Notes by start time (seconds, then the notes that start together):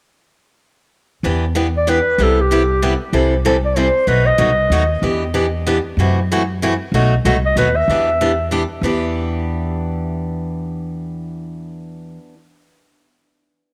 1.23 E2 E3 B3 D4 G4
1.55 E3 B3 D4 G4
1.77 D5
1.87 E3 B3 D4 G4 B4
2.18 C2 C3 G3 B3 E4 G4
2.23 A4
2.41 G4
2.51 C3 G3 B3 E4 G4
2.82 C3 G3 B3 E4 G4
3.13 C2 C3 E3 G3 C4 E4 A4
3.45 C3 E3 G3 C4 E4 A4
3.65 D5
3.76 C3 E3 G3 C4 E4 A4 C5
4.07 B1 B2 F#3 A3 D#4 F#4 B4
4.26 D#5
4.38 C2 B2 F#3 A3 D#4 F#4
4.70 D#2 B2 F#3 A3 D#4 F#4
5.02 E2 E3 B3 D4 G4
5.34 E3 B3 D4 G4
5.67 E3 B3 D4 G4
5.97 F#2 C3 E3 A3 E4 F#4
6.32 C3 E3 A3 E4 F#4
6.62 C3 E3 A3 E4 F#4
6.92 B1 B2 F#3 A3 D#4 F#4
7.25 C2 B2 F#3 A3 D#4 F#4
7.46 D#5
7.56 D#2 B2 F#3 A3 D#4 F#4 B4
7.76 E5
7.88 E2 E3 B3 D4 G4
8.21 E3 B3 D4 G4
8.51 E3 B3 D4 G4
8.81 E2 E3 B3 D4 G4